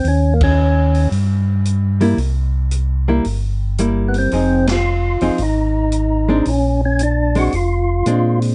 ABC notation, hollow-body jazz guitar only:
X:1
M:4/4
L:1/8
Q:"Swing" 1/4=112
K:Ebmix
V:1 name="Hollow-body jazz guitar"
z6 z [G,B,_F] | z3 [G,B,=E] z2 [G,B,E]2 | [F,CEA] z2 [F,CEA] z3 [A,C=D] | z3 [A,C=D] z2 [A,CD]2 |]